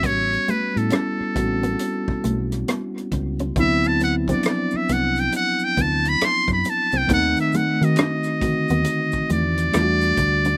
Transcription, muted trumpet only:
X:1
M:4/4
L:1/16
Q:"Swing 16ths" 1/4=68
K:Ador
V:1 name="Muted trumpet"
^c2 B A8 z4 z | e a f d d e f g f g a b c' b a g | f e f ^d6- d =d6 |]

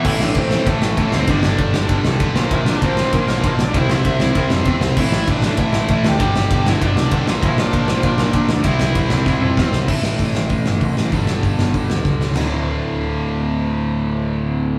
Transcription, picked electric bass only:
X:1
M:4/4
L:1/8
Q:1/4=195
K:Dm
V:1 name="Picked electric bass" clef=bass
A,,, A,,, A,,,2 A,,, A,,, A,,, D,, | G,,, G,,, G,,, G,,, G,,, C,, A,,, B,,, | B,,, B,,, B,,,2 B,,, B,,, B,,, B,,, | C,, C,, C,, C,, C,, F,, E,, C,, |
A,,, A,,, A,,,2 A,,, A,,, A,,, D,, | G,,, G,,, G,,, G,,, G,,, C,, =B,,, _B,,, | B,,, B,,, B,,,2 B,,, B,,, B,,, D,, | C,, C,, C,, C,, C,, F,, E,, C,, |
A,,, A,,, A,,, A,,, A,,, G,,, C,, A,,, | G,,, G,,, G,,, G,,, G,,, D,,, ^C,,2 | D,,,8- | D,,,8 |]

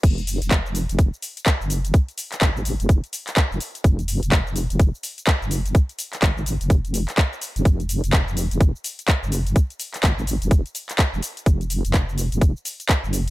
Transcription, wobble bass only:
X:1
M:4/4
L:1/16
Q:"Swing 16ths" 1/4=126
K:Fphr
V:1 name="Wobble bass" clef=bass
F,,,3 F,,,4 F,,,2 z4 G,,,3 | z4 A,,,3 F,,,2 z4 F,,, z2 | F,,,3 F,,,4 F,,,2 z4 G,,,3 | z4 A,,,3 F,,,4 z4 F,,, |
F,,,3 F,,,4 F,,,2 z4 G,,,3 | z4 A,,,3 F,,,2 z4 F,,, z2 | F,,,3 F,,,4 F,,,2 z4 G,,,3 |]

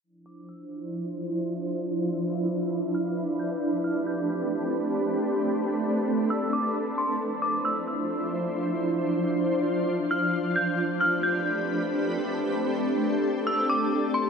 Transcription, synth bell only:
X:1
M:4/4
L:1/8
Q:1/4=134
K:Ddor
V:1 name="Synth bell"
z d' e'2 z4 | z4 z f'2 g' | z f' g'2 z4 | z4 e' d'2 c' |
z d' e'2 z4 | z4 z f'2 g' | z f' g'2 z4 | z4 e' d'2 c' |]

